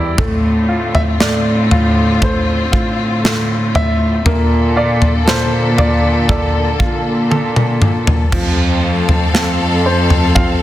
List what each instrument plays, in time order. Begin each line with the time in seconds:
Already playing: cello section E2, string section C3 G3 G4, grand piano A3 E4 D5
0.18 cello section A2, string section D3 C4 F4, grand piano A3, kick, floor tom
0.68 grand piano F4
0.95 grand piano E5, floor tom
1.20 cello section A2, grand piano A3 D5, snare
1.71 grand piano F4, floor tom
2.22 grand piano A3 C5, kick, floor tom
2.72 cello section A2, grand piano F4, kick
3.24 grand piano A3, snare
3.75 grand piano E5, floor tom
4.24 cello section A#2, string section D3 A#3 A4, grand piano A#3, floor tom
4.76 grand piano F4 D5
5.02 floor tom
5.26 cello section A#2, grand piano A4 C5, snare
5.77 grand piano F4 D5, floor tom
6.29 grand piano A4 D5, kick, floor tom
6.79 cello section A#2, grand piano F4, kick
7.31 grand piano A4, high tom
7.56 mid tom
7.82 mid tom
8.07 floor tom
8.32 cello section F2, string section F3 A3 A4, grand piano F3, violin section C4 A4 F5, kick, floor tom, crash
9.09 floor tom
9.34 cello section F2, grand piano C4 F4 A4, snare
9.86 grand piano C4 C5
10.10 floor tom
10.35 grand piano C4 F4 A4 F5, kick, floor tom